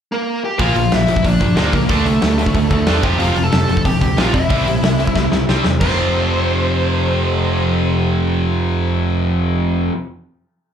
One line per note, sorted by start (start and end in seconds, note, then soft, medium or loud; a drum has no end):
0.12 0.42 A#3 medium
0.12 0.43 A#4 medium
0.44 0.59 G4 medium
0.44 0.61 G5 medium
0.58 0.70 A#1 medium
0.58 0.74 A#2 medium
0.58 0.75 F3 medium
0.58 0.75 A#3 medium
0.58 0.91 F4 medium
0.58 0.93 F5 medium
0.58 kick loud
0.58 open hi-hat medium
0.76 0.86 A#1 medium
0.76 0.90 A#2 medium
0.76 0.91 F3 medium
0.76 open hi-hat medium
0.91 1.03 A#1 medium
0.91 1.06 A#2 medium
0.91 1.06 F3 medium
0.91 1.23 E4 medium
0.91 1.27 E5 medium
0.91 snare loud
0.91 open hi-hat medium
1.07 1.19 A#1 medium
1.07 1.22 A#2 medium
1.07 1.22 F3 medium
1.07 open hi-hat medium
1.16 kick medium
1.23 1.35 A#1 medium
1.23 1.39 A#2 medium
1.23 1.39 F3 medium
1.23 1.56 D4 medium
1.23 1.56 D5 medium
1.23 kick medium
1.23 open hi-hat medium
1.40 1.51 G2 medium
1.40 1.54 A#2 medium
1.40 1.55 F3 medium
1.40 kick medium
1.40 open hi-hat medium
1.55 1.68 D2 medium
1.55 1.71 A#2 medium
1.55 1.71 F3 medium
1.55 1.73 A#3 medium
1.55 1.72 D4 medium
1.55 1.74 D5 medium
1.55 snare loud
1.55 open hi-hat medium
1.72 1.84 C#2 medium
1.72 1.88 A#2 medium
1.72 1.88 F3 medium
1.72 1.90 A#3 medium
1.72 1.90 A#4 medium
1.72 kick medium
1.72 open hi-hat medium
1.88 2.00 D2 medium
1.88 2.05 D3 medium
1.88 2.04 A3 medium
1.88 2.68 A3 medium
1.88 2.05 D4 medium
1.88 2.71 A4 medium
1.88 kick loud
1.88 open hi-hat medium
2.06 2.16 C2 medium
2.06 2.20 D3 medium
2.06 2.21 A3 medium
2.06 open hi-hat medium
2.22 2.44 D2 medium
2.22 2.37 D3 medium
2.22 2.37 A3 medium
2.22 snare loud
2.22 open hi-hat medium
2.39 2.53 D3 medium
2.39 2.54 A3 medium
2.39 open hi-hat medium
2.46 kick medium
2.54 2.66 D2 medium
2.54 2.70 D3 medium
2.54 2.70 A3 medium
2.54 kick loud
2.54 open hi-hat medium
2.71 2.82 D2 medium
2.71 2.85 D3 medium
2.71 2.86 A3 medium
2.71 3.03 A3 medium
2.71 3.06 A4 medium
2.71 kick medium
2.71 open hi-hat soft
2.87 2.99 E2 medium
2.87 3.03 D3 medium
2.87 3.03 A3 medium
2.87 3.03 D4 medium
2.87 snare loud
2.87 open hi-hat medium
3.03 3.14 F1 medium
3.03 3.18 F2 loud
3.03 3.18 C3 medium
3.03 3.19 F3 loud
3.03 3.19 G4 medium
3.03 3.21 G5 loud
3.03 kick loud
3.03 open hi-hat medium
3.19 3.31 F1 medium
3.19 3.35 F2 medium
3.19 3.35 C3 medium
3.19 3.35 F3 loud
3.19 3.43 F4 medium
3.19 3.45 F5 loud
3.19 open hi-hat medium
3.36 3.47 F1 medium
3.36 3.50 F2 medium
3.36 3.51 C3 medium
3.36 open hi-hat soft
3.43 3.51 A4 medium
3.43 3.52 A5 medium
3.51 3.64 F1 medium
3.51 3.66 F2 medium
3.51 3.67 C3 medium
3.51 3.83 A4 medium
3.51 3.85 A5 medium
3.51 snare loud
3.51 open hi-hat medium
3.68 3.80 F1 medium
3.68 3.83 F2 medium
3.68 3.83 C3 medium
3.68 open hi-hat medium
3.77 kick medium
3.85 3.96 F1 medium
3.85 4.00 F2 medium
3.85 4.00 C3 medium
3.85 4.16 G4 medium
3.85 4.19 G5 medium
3.85 kick medium
3.85 open hi-hat medium
4.01 4.12 D2 medium
4.01 4.16 F2 medium
4.01 4.16 C3 medium
4.01 kick medium
4.01 open hi-hat medium
4.17 4.28 A#1 medium
4.17 4.33 F2 medium
4.17 4.33 C3 medium
4.17 4.34 F3 medium
4.17 4.34 F4 medium
4.17 4.34 F5 medium
4.17 snare loud
4.17 open hi-hat medium
4.34 4.45 F1 medium
4.34 4.49 F2 medium
4.34 4.48 C3 medium
4.34 5.45 E4 medium
4.34 5.44 E5 medium
4.34 kick medium
4.34 open hi-hat medium
4.49 4.61 C2 medium
4.49 4.65 C3 medium
4.49 4.66 G3 medium
4.49 4.66 C4 loud
4.49 kick loud
4.49 open hi-hat medium
4.66 4.77 A#1 medium
4.66 4.81 C3 medium
4.66 4.82 G3 medium
4.66 open hi-hat medium
4.83 5.04 C2 medium
4.83 4.98 C3 medium
4.83 4.98 G3 medium
4.83 snare loud
4.83 open hi-hat medium
4.99 5.14 C3 medium
4.99 5.14 G3 medium
4.99 open hi-hat medium
5.07 kick medium
5.15 5.26 C2 medium
5.15 5.31 C3 medium
5.15 5.31 G3 medium
5.15 kick medium
5.15 snare medium
5.32 5.42 C2 medium
5.32 5.47 C3 medium
5.32 5.47 G3 medium
5.32 snare medium
5.49 5.59 C2 medium
5.49 5.64 C3 medium
5.49 5.64 G3 medium
5.49 5.65 C4 medium
5.49 snare medium
5.64 5.75 E2 medium
5.64 5.80 C3 medium
5.64 5.80 G3 medium
5.64 snare medium
5.80 9.88 F1 medium
5.80 9.93 F2 medium
5.80 9.94 C3 loud
5.80 9.18 C5 medium
5.80 kick loud
5.80 crash medium
5.85 9.95 F3 medium